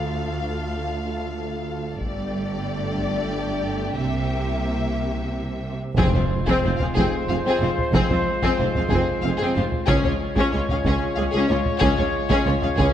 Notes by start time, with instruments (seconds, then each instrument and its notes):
Already playing: double bass section D2, cello section D2, french horn section A3 F4, viola section A3, violin section A4 F5
2.00 double bass section G1, cello section G2, french horn section A3 D4, viola section A3, violin section G4 D5, taiko
2.98 taiko
3.97 double bass section C2, cello section C3, french horn section A#3 E4, viola section A#3, violin section E5
5.96 double bass section F1, tuba F1, timpani F2, cello section F2, french horn section G#3 F4, viola section C4, violin section C4 G#4, trumpet section C5, taiko, impact
6.14 cello section F2, viola section C4, violin section F4 C5, taiko low
6.46 cello section F2, violin section C4 G#4, viola section C4, taiko
6.63 tuba F1, double bass section F1, cello section F2, viola section C4, violin section F4 C5
6.78 cello section F2, viola section C4, violin section G#4 F5, taiko low
6.95 tuba F1, double bass section F1, cello section F2, violin section C4 G#4, viola section C4, taiko
7.28 tuba F1, double bass section F1, cello section F2, viola section C4, violin section G#4 F5
7.45 cello section F2, violin section C4 G#4, viola section C4
7.61 double bass section F1, tuba F1, cello section F2, viola section C4, violin section F4 C5
7.78 taiko low
7.93 double bass section F1, tuba F1, cello section F2, viola section C4, violin section C4 G#4, taiko
8.10 cello section F2, viola section C4, violin section F4 C5, taiko low
8.42 cello section F2, viola section C4, violin section C4 G#4, taiko
8.58 double bass section F1, tuba F1, cello section F2, viola section C4, violin section F4 C5
8.75 cello section F2, viola section C4, violin section G#4 F5, taiko low
8.90 double bass section F1, tuba F1, cello section F2, viola section C4, violin section G#4, taiko
8.94 violin section C4
9.22 double bass section F1, tuba F1, cello section F2, viola section C4, violin section F5
9.28 violin section G#4
9.37 cello section F2, violin section G#4
9.41 viola section C4, violin section C4
9.55 tuba F1, double bass section F1, cello section F2, viola section C4, violin section F4 C5
9.72 taiko low
9.87 tuba C#2, double bass section C#2, cello section C#2, french horn section G#3 F4, viola section C#4, violin section C#4 G#4, trumpet section C#5, taiko
10.04 cello section C#2, viola section C#4, violin section F4 C#5, taiko low
10.36 cello section C#2, violin section C#4 G#4, viola section C#4, taiko
10.52 tuba C#2, cello section C#2, double bass section C#2, viola section C#4, violin section F4 C#5
10.69 cello section C#2, viola section C#4, violin section G#4 F5, taiko low
10.85 cello section C#2, tuba C#2, double bass section C#2, violin section C#4 G#4, viola section C#4, taiko
11.15 tuba C#2, double bass section C#2, cello section C#2, violin section G#4 F5
11.21 viola section C#4
11.31 cello section C#2, violin section C#4 G#4
11.36 viola section C#4
11.48 tuba C#2, double bass section C#2, cello section C#2, violin section F4 C#5
11.52 viola section C#4
11.66 taiko low
11.79 tuba C#2, double bass section C#2, cello section C#2, violin section C#4 G#4, taiko
11.84 viola section C#4
11.97 cello section C#2, viola section C#4, violin section F4 C#5, taiko low
12.30 cello section C#2, violin section C#4 G#4, viola section C#4, taiko
12.46 double bass section C#2, tuba C#2, cello section C#2, viola section C#4, violin section F4 C#5
12.62 cello section C#2, viola section C#4, violin section G#4 F5, taiko low
12.77 double bass section C#2, tuba C#2, cello section C#2, violin section C#4 G#4, viola section C#4, taiko